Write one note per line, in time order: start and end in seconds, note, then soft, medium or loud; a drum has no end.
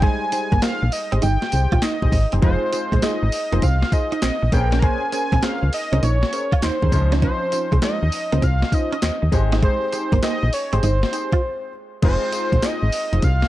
0.00 2.09 G3 medium
0.00 2.08 G#3 medium
0.00 0.17 G#3 medium
0.00 2.09 D#4 medium
0.00 0.24 D#4 loud
0.00 0.24 G4 medium
0.00 0.24 G#4 medium
0.00 2.10 C5 medium
0.00 0.24 C5 loud
0.00 0.31 G#5 loud
0.00 kick loud
0.00 closed hi-hat medium
0.32 0.54 D#4 medium
0.32 0.54 G4 medium
0.32 0.54 G#4 medium
0.32 0.54 C5 medium
0.32 0.61 G#5 loud
0.32 muted clean electric guitar stroke soft
0.32 closed hi-hat medium
0.32 tambourine medium
0.52 0.60 G1 loud
0.52 0.60 A#3 medium
0.52 kick medium
0.52 closed hi-hat soft
0.62 0.76 A#3 medium
0.62 0.84 D#4 medium
0.62 0.84 G4 medium
0.62 0.84 G#4 medium
0.62 0.84 C5 medium
0.62 0.94 F5 loud
0.62 snare loud
0.62 clap medium
0.62 closed hi-hat medium
0.62 tambourine medium
0.82 0.90 A#1 medium
0.82 muted clean electric guitar stroke soft
0.92 1.22 D#5 loud
0.92 open hi-hat medium
0.92 tambourine medium
1.12 1.20 G#1 medium
1.12 1.19 C4 medium
1.12 1.26 D#4 medium
1.12 1.26 G4 medium
1.12 1.26 G#4 medium
1.12 1.26 C5 medium
1.12 closed hi-hat medium
1.22 1.37 G1 loud
1.22 1.36 D#4 medium
1.22 1.85 G5 loud
1.22 closed hi-hat medium
1.22 tambourine medium
1.42 muted clean electric guitar stroke soft
1.42 snare medium
1.52 1.67 C2 medium
1.52 1.74 D#4 medium
1.52 1.74 G4 medium
1.52 1.74 G#4 medium
1.52 1.74 C5 medium
1.52 closed hi-hat medium
1.52 tambourine medium
1.72 1.80 A#1 medium
1.72 1.80 F4 medium
1.72 kick loud
1.72 closed hi-hat medium
1.82 1.97 D#4 medium
1.82 2.33 D#5 loud
1.82 snare loud
1.82 clap loud
1.82 closed hi-hat medium
1.82 tambourine medium
2.02 2.10 A#1 medium
2.02 2.16 D#4 medium
2.02 2.16 G4 medium
2.02 2.16 G#4 medium
2.02 2.16 C5 medium
2.02 kick medium
2.12 2.27 G#1 medium
2.12 muted clean electric guitar stroke soft
2.12 kick loud
2.12 open hi-hat medium
2.12 tambourine medium
2.32 2.40 F#1 medium
2.32 2.40 C4 medium
2.32 2.41 D#4 medium
2.32 2.46 G4 medium
2.32 2.41 G#4 medium
2.32 2.41 C5 medium
2.32 closed hi-hat medium
2.42 2.57 F1 loud
2.42 2.57 F3 medium
2.42 4.48 G#3 medium
2.42 2.64 D#4 loud
2.42 4.49 D#4 medium
2.42 2.64 F4 medium
2.42 4.49 F4 medium
2.42 2.64 G#4 medium
2.42 2.64 C5 loud
2.42 3.04 C5 loud
2.42 4.49 C5 medium
2.42 kick loud
2.42 closed hi-hat medium
2.72 2.94 D#4 medium
2.72 2.94 F4 medium
2.72 2.94 G#4 medium
2.72 2.94 C5 medium
2.72 muted clean electric guitar stroke soft
2.72 closed hi-hat medium
2.72 tambourine medium
2.92 3.00 A#1 medium
2.92 3.00 G#3 medium
2.92 kick medium
2.92 closed hi-hat soft
3.02 3.17 G#3 medium
3.02 3.24 D#4 medium
3.02 3.24 F4 medium
3.02 3.24 G#4 medium
3.02 3.24 C5 medium
3.02 3.65 D#5 loud
3.02 snare loud
3.02 clap medium
3.02 closed hi-hat medium
3.02 tambourine medium
3.23 3.30 G#1 medium
3.23 muted clean electric guitar stroke soft
3.32 open hi-hat medium
3.32 tambourine medium
3.52 3.60 F1 medium
3.52 3.60 A#3 medium
3.52 3.66 D#4 medium
3.52 3.66 F4 medium
3.52 3.66 G#4 medium
3.52 3.66 C5 medium
3.52 closed hi-hat soft
3.62 3.84 C2 loud
3.62 3.77 C4 medium
3.62 3.95 F5 loud
3.62 kick medium
3.62 closed hi-hat medium
3.62 tambourine medium
3.82 muted clean electric guitar stroke soft
3.82 snare medium
3.92 4.14 D#4 medium
3.92 4.14 F4 medium
3.92 4.14 G#4 medium
3.92 4.14 C5 medium
3.92 4.55 D#5 loud
3.92 kick medium
3.92 closed hi-hat medium
3.92 tambourine medium
4.12 4.19 D#4 medium
4.12 closed hi-hat soft
4.22 4.31 A#1 medium
4.22 4.36 C4 medium
4.22 snare loud
4.22 clap loud
4.22 closed hi-hat medium
4.22 tambourine medium
4.42 4.50 A#1 medium
4.42 muted clean electric guitar stroke medium
4.52 4.88 A#1 medium
4.52 6.88 A#3 medium
4.52 4.74 C#4 medium
4.52 6.89 C#4 medium
4.52 4.74 G#4 medium
4.52 6.89 G#4 medium
4.52 4.74 A#4 medium
4.52 4.62 B4 medium
4.52 4.74 C5 medium
4.52 4.81 G5 loud
4.52 kick loud
4.52 closed hi-hat medium
4.52 tambourine medium
4.61 6.93 A#4 medium
4.72 4.80 C#4 medium
4.72 snare medium
4.72 closed hi-hat medium
4.79 4.97 A#3 medium
4.79 5.04 C#4 loud
4.79 5.04 G#4 medium
4.79 5.04 A#4 medium
4.79 5.04 C5 loud
4.79 4.85 A#5 medium
4.79 kick loud
4.79 closed hi-hat medium
4.83 5.13 G#5 loud
5.12 5.34 C#4 medium
5.12 5.34 G#4 medium
5.12 5.34 A#4 medium
5.12 5.34 C5 medium
5.12 5.45 G#5 loud
5.12 muted clean electric guitar stroke soft
5.12 closed hi-hat medium
5.12 tambourine medium
5.32 5.40 A#1 medium
5.32 5.40 C4 medium
5.32 kick medium
5.32 closed hi-hat medium
5.42 5.56 C4 medium
5.42 5.64 C#4 medium
5.42 5.64 G#4 medium
5.42 5.64 A#4 medium
5.42 5.64 C5 medium
5.42 5.73 F5 loud
5.42 snare loud
5.42 clap medium
5.42 closed hi-hat medium
5.42 tambourine medium
5.63 5.70 C#2 medium
5.63 muted clean electric guitar stroke soft
5.73 6.01 D#5 medium
5.73 open hi-hat medium
5.73 tambourine medium
5.92 6.00 C2 loud
5.92 6.06 C#4 medium
5.92 6.00 C#4 medium
5.92 6.06 G#4 medium
5.92 6.06 A#4 medium
5.92 6.06 C5 medium
5.92 closed hi-hat medium
6.03 6.24 A#1 loud
6.03 6.17 D#4 medium
6.03 6.66 C#5 loud
6.03 closed hi-hat medium
6.03 tambourine medium
6.23 muted clean electric guitar stroke soft
6.23 snare medium
6.32 6.54 C#4 medium
6.32 6.54 G#4 medium
6.32 6.54 A#4 medium
6.32 6.54 C5 medium
6.32 closed hi-hat medium
6.32 tambourine medium
6.52 6.60 F4 medium
6.52 kick medium
6.52 closed hi-hat soft
6.62 6.71 D#2 medium
6.62 6.77 D#4 medium
6.62 7.13 C5 medium
6.62 snare loud
6.62 clap loud
6.62 closed hi-hat medium
6.62 tambourine medium
6.82 6.90 D#2 medium
6.82 6.96 C#4 medium
6.82 6.96 G#4 medium
6.82 6.96 A#4 medium
6.82 6.96 C5 medium
6.82 kick medium
6.92 7.28 C#2 loud
6.92 9.28 F3 medium
6.92 9.28 C#4 medium
6.92 9.29 D#4 medium
6.92 9.29 C5 medium
6.92 muted clean electric guitar stroke soft
6.92 kick loud
6.92 closed hi-hat medium
6.92 tambourine medium
7.12 7.22 C#4 medium
7.12 7.20 C#4 medium
7.12 7.22 D#4 medium
7.12 7.22 F4 medium
7.12 7.22 C5 medium
7.12 snare medium
7.12 closed hi-hat medium
7.22 7.36 C#4 medium
7.22 7.44 C#4 loud
7.22 7.44 D#4 medium
7.22 7.44 F4 medium
7.22 7.45 C5 loud
7.22 7.79 C5 medium
7.22 kick loud
7.22 closed hi-hat medium
7.52 7.74 C#4 medium
7.52 7.74 D#4 medium
7.52 7.74 F4 medium
7.52 7.74 C5 medium
7.52 muted clean electric guitar stroke soft
7.52 closed hi-hat medium
7.52 tambourine medium
7.72 7.80 C2 medium
7.72 7.80 G#3 medium
7.72 kick medium
7.72 closed hi-hat medium
7.82 7.97 G#3 medium
7.82 8.04 C#4 medium
7.82 8.04 D#4 medium
7.82 8.04 F4 medium
7.82 8.05 C5 medium
7.82 8.45 D#5 loud
7.82 snare loud
7.82 clap medium
7.82 closed hi-hat medium
7.82 tambourine medium
8.03 8.10 D#2 medium
8.03 muted clean electric guitar stroke soft
8.12 open hi-hat medium
8.12 tambourine medium
8.32 8.40 C#2 loud
8.32 8.40 A#3 medium
8.32 8.46 C#4 medium
8.32 8.46 D#4 medium
8.32 8.46 F4 medium
8.32 8.46 C5 medium
8.32 closed hi-hat medium
8.42 8.64 C2 loud
8.42 8.56 C4 medium
8.42 8.76 F5 loud
8.42 kick medium
8.42 closed hi-hat medium
8.42 tambourine medium
8.62 muted clean electric guitar stroke soft
8.62 snare medium
8.72 8.94 C#4 medium
8.72 8.94 D#4 medium
8.72 8.94 F4 medium
8.72 8.94 C5 medium
8.72 9.33 D#5 loud
8.72 kick medium
8.72 closed hi-hat medium
8.72 tambourine medium
8.92 9.00 C#4 medium
8.92 closed hi-hat soft
9.02 9.11 D#2 soft
9.02 9.17 C4 medium
9.02 snare loud
9.02 clap loud
9.02 closed hi-hat medium
9.02 tambourine medium
9.22 9.30 D#2 medium
9.22 muted clean electric guitar stroke soft
9.32 9.68 G#1 medium
9.32 11.68 G#3 medium
9.32 9.54 D#4 medium
9.32 11.68 D#4 medium
9.32 9.54 G4 medium
9.32 11.69 G4 medium
9.32 9.54 G#4 medium
9.32 9.54 C5 medium
9.32 11.69 C5 medium
9.32 kick loud
9.32 closed hi-hat medium
9.32 tambourine medium
9.52 9.60 D#4 medium
9.52 snare medium
9.52 closed hi-hat medium
9.62 9.77 G#3 medium
9.62 9.84 D#4 loud
9.62 9.84 G4 medium
9.62 9.84 G#4 medium
9.62 9.84 C5 loud
9.62 10.19 C5 loud
9.62 kick loud
9.62 closed hi-hat medium
9.92 10.14 D#4 medium
9.92 10.14 G4 medium
9.92 10.14 G#4 medium
9.92 10.14 C5 medium
9.92 muted clean electric guitar stroke soft
9.92 closed hi-hat medium
9.92 tambourine medium
10.12 10.20 G1 medium
10.12 10.20 A#3 medium
10.12 kick medium
10.12 closed hi-hat medium
10.22 10.37 A#3 medium
10.22 10.44 D#4 medium
10.22 10.44 G4 medium
10.22 10.44 G#4 medium
10.22 10.44 C5 medium
10.22 10.55 D#5 loud
10.22 snare loud
10.22 clap medium
10.22 closed hi-hat medium
10.22 tambourine medium
10.43 10.50 A#1 loud
10.43 muted clean electric guitar stroke soft
10.53 10.75 C#5 loud
10.53 open hi-hat medium
10.53 tambourine medium
10.73 10.80 G#1 medium
10.73 10.80 C4 medium
10.73 10.86 D#4 medium
10.73 10.86 G4 medium
10.73 10.86 G#4 medium
10.73 10.86 C5 medium
10.73 11.73 C5 loud
10.73 closed hi-hat medium
10.83 11.05 G1 loud
10.83 10.97 D#4 medium
10.83 closed hi-hat medium
10.83 tambourine medium
11.03 muted clean electric guitar stroke soft
11.03 snare medium
11.12 11.34 D#4 medium
11.12 11.34 G4 medium
11.12 11.34 G#4 medium
11.12 11.34 C5 medium
11.12 closed hi-hat medium
11.12 tambourine medium
11.32 11.40 F4 medium
11.32 kick medium
11.32 closed hi-hat soft
12.02 12.17 F1 loud
12.02 13.48 G#3 medium
12.02 13.48 C4 medium
12.02 12.24 D#4 loud
12.02 13.48 D#4 medium
12.02 12.24 F4 medium
12.02 13.48 F4 medium
12.02 12.24 G#4 medium
12.02 12.24 C5 loud
12.02 12.66 C5 loud
12.02 13.48 C5 medium
12.02 kick loud
12.02 closed hi-hat medium
12.02 crash loud
12.32 12.54 D#4 medium
12.32 12.54 F4 medium
12.32 12.54 G#4 medium
12.32 12.54 C5 loud
12.32 closed hi-hat medium
12.32 tambourine medium
12.52 12.60 A#1 medium
12.52 kick medium
12.52 closed hi-hat medium
12.62 12.84 D#4 medium
12.62 12.84 F4 medium
12.62 12.84 G#4 medium
12.62 12.84 C5 medium
12.62 13.26 D#5 loud
12.62 snare loud
12.62 clap medium
12.62 closed hi-hat medium
12.62 tambourine medium
12.83 12.90 G#1 medium
12.92 open hi-hat medium
12.92 tambourine medium
13.12 13.20 F1 loud
13.12 13.26 D#4 medium
13.12 13.26 F4 medium
13.12 13.26 G#4 medium
13.12 13.26 C5 medium
13.12 closed hi-hat medium
13.22 13.44 C2 loud
13.22 13.48 F5 loud
13.22 kick loud
13.22 closed hi-hat medium
13.22 tambourine medium
13.42 snare medium